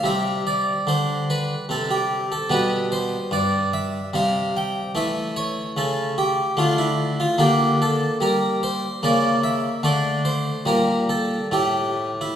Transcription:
<<
  \new Staff \with { instrumentName = "Harpsichord" } { \time 3/4 \key c \major \tempo 4 = 74 e''8 d''8 c''8 b'8 a'16 g'8 a'16 | b'8 c''8 d''8 e''8 f''8 g''8 | \key g \dorian e''8 cis''8 a'8 g'8 f'16 e'8 f'16 | g'8 a'8 bes'8 c''8 d''8 e''8 |
d''8 c''8 bes'8 a'8 g'8. e'16 | }
  \new Staff \with { instrumentName = "Harpsichord" } { \clef bass \time 3/4 \key c \major << { g2. | g2 g4 | \key g \dorian a2 a4 | bes2 ais4 |
a4 g4 a4 | } \\ { c4 d4 c4 | b,4 g,4 c4 | e4 cis4 d4 | d4 g4 cis4 |
d4 bes,4 a,4 | } >> }
>>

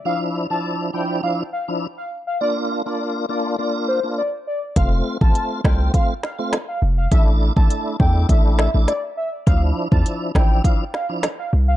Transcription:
<<
  \new Staff \with { instrumentName = "Soft synth lead" } { \time 4/4 \key d \minor \tempo 4 = 102 f''16 r8 a''8 r16 g''8 f''16 r16 f''16 r8 f''16 r16 f''16 | d''16 r8 d''8 r16 d''8 d''16 r16 c''16 r16 d''16 r16 d''16 r16 | f''16 r8 a''8 r16 g''8 f''16 r16 f''16 r8 f''16 r16 f''16 | e''16 r8 a''8 r16 g''8 e''16 r16 e''16 r16 d''16 r16 e''16 r16 |
f''16 r8 a''8 r16 g''8 f''16 r16 f''16 r8 f''16 r16 f''16 | }
  \new Staff \with { instrumentName = "Tonewheel organ" } { \time 4/4 \key d \minor <f d' e'>8. <f d' e'>8. <f d' e'>8 <f d' e'>16 r8 <f d' e'>16 r4 | <bes d' f'>8. <bes d' f'>8. <bes d' f'>8 <bes d' f'>8. <bes d' f'>16 r4 | <a c' f'>8. <a c' f'>8. <a c' f'>8 <a c' f'>16 r8 <a c' f'>16 r4 | <a d' e'>8. <a d' e'>8. <a d' e'>8 <a d' e'>8. <a d' e'>16 r4 |
<f d' e'>8. <f d' e'>8. <f d' e'>8 <f d' e'>16 r8 <f d' e'>16 r4 | }
  \new Staff \with { instrumentName = "808-style bass" } { \clef bass \time 4/4 \key d \minor r1 | r1 | f,,8 r16 a,,16 r8 c,8 r4. f,,8 | a,,8. a,,16 r8 e,8 a,,8. a,,16 r4 |
d,8 r16 e,16 r8 a,,8 r4. c,8 | }
  \new DrumStaff \with { instrumentName = "Drums" } \drummode { \time 4/4 r4 r4 r4 r4 | r4 r4 r4 r4 | <hh bd>8. bd16 hh8 <bd ss sn>8 <hh bd>8 sn8 <hh ss sn>4 | <hh bd>8. bd16 hh8 bd8 <hh bd>8 <ss sn>8 <hh sn>4 |
<hh bd>8. bd16 hh8 <bd ss sn>8 <hh bd>8 sn8 <hh ss sn>4 | }
>>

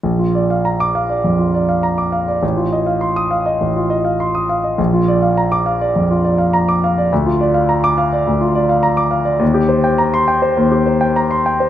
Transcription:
\new Staff \with { instrumentName = "Grand piano" } { \time 4/4 \key bes \major \tempo 4 = 103 << { r4 r16 d'''8 r2 r16 | r4 r16 ees'''8 r2 r16 | r4 r16 d'''8 r2 r16 | r4 r16 d'''8 r2 r16 |
r4 r16 c'''8 r2 r16 | } \\ { bes,,16 f'16 d''16 f''16 bes''8 f''16 d''16 f,16 f'16 d''16 f''16 bes''16 d'''16 f''16 d''16 | a,,16 f'16 ees''16 f''16 c'''8 f''16 ees''16 a,,16 f'16 ees''16 f''16 c'''16 ees'''16 f''16 ees''16 | bes,,16 f'16 d''16 f''16 bes''8 f''16 d''16 f,16 f'16 d''16 f''16 bes''16 d'''16 f''16 d''16 | d,16 f'16 d''16 f''16 bes''8 f''16 d''16 d,16 f'16 d''16 f''16 bes''16 d'''16 f''16 d''16 |
ees,16 g'16 c''16 g''16 bes''8 g''16 c''16 ees,16 g'16 c''16 g''16 bes''16 c'''16 g''16 c''16 | } >> }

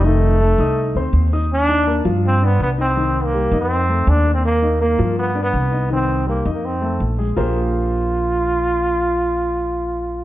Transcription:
<<
  \new Staff \with { instrumentName = "Grand piano" } { \time 4/4 \key bes \mixolydian \tempo 4 = 164 <ees ees' ees''>4 <a a' a''>8 <ees' ees'' ees'''>4 <c' c'' c'''>4 <ees' ees'' ees'''>8 | r8 <ees' ees''>8 <bes bes'>8 <f f'>4 <d' d''>4 <ees' ees''>8 | <ees ees'>4 <g g'>8 <ees' ees''>4 <a a'>4 <bes bes'>8~ | <bes bes'>8 <ees' ees''>8 <bes bes'>8 <f f'>4 <d' d''>4 <ees' ees''>8 |
<ees ees'>4 <g g'>8 <ees' ees''>4 <a a'>4 <aes aes'>8 | <bes f' g' aes' bes' c''>1~ | <bes f' g' aes' bes' c''>1 | }
  \new Staff \with { instrumentName = "Trombone" } { \time 4/4 \key bes \mixolydian a2. r4 | d'4. r8 c'8 ces'8 ces'8 c'8~ | \tuplet 3/2 { c'4 bes8~ bes4 c'8~ } c'4 \tuplet 3/2 { d'4 c'8 } | bes4 bes4 \tuplet 3/2 { b4 b8~ } b4 |
c'4 \tuplet 3/2 { bes4 bes8 } c'4 r4 | f'1~ | f'1 | }
  \new Staff \with { instrumentName = "Upright bass" } { \clef bass \time 4/4 \key bes \mixolydian f,,4. c,4 d,8 ees,4~ | ees,4. g,4. c,4~ | c,4. f,4. ees,4~ | ees,4. g,4. c,4~ |
c,4. f,4. bes,,4 | bes,,1~ | bes,,1 | }
>>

